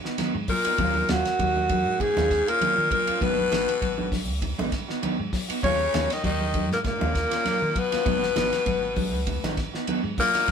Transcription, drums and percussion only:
0.05 snare soft
0.18 snare soft
0.18 ride bell medium
0.18 high conga medium
0.48 kick medium
0.48 open hi-hat medium
0.65 ride bell medium
0.78 kick loud
0.78 ride bell medium
0.78 low conga medium
0.95 high conga medium
1.09 snare medium
1.09 ride bell medium
1.09 high conga medium
1.25 snare soft
1.25 ride bell medium
1.39 kick medium
1.39 ride bell medium
1.39 low conga medium
1.56 high conga medium
1.69 kick medium
1.69 ride bell medium
1.69 high conga medium
2.00 kick medium
2.00 ride bell medium
2.00 low conga medium
2.17 snare soft
2.17 high conga medium
2.31 kick medium
2.31 snare soft
2.31 ride bell medium
2.48 ride bell medium
2.61 ride bell medium
2.61 high conga medium
2.91 kick medium
2.91 ride bell medium
2.91 high conga medium
3.07 ride bell medium
3.21 kick loud
3.21 ride bell soft
3.21 low conga medium
3.38 high conga medium
3.52 snare medium
3.52 ride bell medium
3.52 high conga medium
3.69 ride bell medium
3.82 kick medium
3.82 ride bell medium
3.98 high conga medium
4.12 kick medium
4.12 snare soft
4.12 open hi-hat medium
4.12 high conga medium
4.42 kick medium
4.42 ride bell medium
4.42 low conga medium
4.59 high conga loud
4.72 kick medium
4.72 snare soft
4.72 ride bell medium
4.90 snare soft
5.03 ride bell medium
5.03 high conga medium
5.33 kick medium
5.33 snare soft
5.33 open hi-hat medium
5.50 ride bell medium
5.63 kick medium
5.63 ride bell medium
5.63 low conga medium
5.94 snare medium
5.94 ride bell medium
5.94 high conga medium
6.10 snare soft
6.10 ride bell medium
6.24 kick medium
6.24 ride bell soft
6.24 low conga medium
6.41 high conga medium
6.54 kick medium
6.54 ride bell medium
6.54 high conga medium
6.72 snare soft
6.84 kick medium
6.84 snare soft
6.84 ride bell soft
6.84 low conga medium
7.01 high conga loud
7.15 kick medium
7.15 snare soft
7.15 ride bell medium
7.31 snare soft
7.31 ride bell medium
7.45 snare soft
7.45 ride bell medium
7.45 high conga medium
7.76 kick medium
7.76 ride bell medium
7.92 snare soft
7.92 ride bell medium
8.06 kick loud
8.06 ride bell soft
8.06 low conga medium
8.23 snare soft
8.36 snare medium
8.36 ride bell medium
8.36 high conga medium
8.53 snare soft
8.53 ride bell soft
8.66 kick medium
8.66 ride bell medium
8.66 low conga medium
8.96 kick medium
8.96 open hi-hat medium
8.96 high conga medium
9.27 kick medium
9.27 ride bell medium
9.27 low conga medium
9.44 snare soft
9.44 high conga loud
9.57 kick medium
9.57 snare soft
9.57 ride bell medium
9.75 snare soft
9.87 ride bell medium
9.87 high conga medium
10.18 kick medium
10.18 open hi-hat medium
10.18 high conga medium
10.35 snare soft
10.35 ride bell medium
10.48 kick loud
10.48 ride bell medium

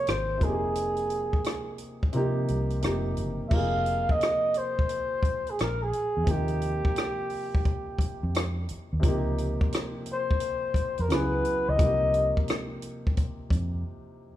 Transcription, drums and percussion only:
0.07 cross-stick loud
0.07 closed hi-hat medium
0.41 kick medium
0.41 closed hi-hat medium
0.75 closed hi-hat medium
0.97 closed hi-hat soft
1.10 closed hi-hat medium
1.33 kick medium
1.44 cross-stick medium
1.44 closed hi-hat medium
1.78 closed hi-hat medium
2.03 kick medium
2.13 closed hi-hat medium
2.48 closed hi-hat medium
2.70 closed hi-hat soft
2.82 cross-stick loud
2.82 closed hi-hat medium
3.17 closed hi-hat medium
3.51 kick loud
3.51 crash medium
3.86 closed hi-hat medium
4.09 kick medium
4.21 cross-stick loud
4.21 closed hi-hat medium
4.54 closed hi-hat medium
4.79 kick medium
4.89 closed hi-hat medium
5.23 kick medium
5.23 closed hi-hat medium
5.47 closed hi-hat soft
5.59 cross-stick loud
5.59 closed hi-hat medium
5.93 closed hi-hat medium
6.27 kick loud
6.27 closed hi-hat medium
6.48 closed hi-hat soft
6.61 closed hi-hat medium
6.85 kick medium
6.96 cross-stick loud
6.96 closed hi-hat medium
7.30 open hi-hat soft
7.55 kick medium
7.65 kick medium
7.65 closed hi-hat medium
7.99 kick medium
7.99 closed hi-hat medium
8.35 cross-stick loud
8.35 closed hi-hat medium
8.69 closed hi-hat medium
9.03 kick loud
9.03 closed hi-hat medium
9.38 closed hi-hat medium
9.61 kick medium
9.72 cross-stick loud
9.72 closed hi-hat medium
10.06 closed hi-hat medium
10.31 kick medium
10.40 closed hi-hat medium
10.74 kick medium
10.74 closed hi-hat medium
10.98 closed hi-hat soft
11.10 cross-stick loud
11.10 closed hi-hat medium
11.45 closed hi-hat medium
11.79 kick loud
11.79 closed hi-hat medium
12.14 closed hi-hat medium
12.37 kick medium
12.48 cross-stick loud
12.48 closed hi-hat medium
12.82 closed hi-hat medium
13.07 kick medium
13.17 kick medium
13.17 closed hi-hat medium
13.50 kick medium
13.50 closed hi-hat medium

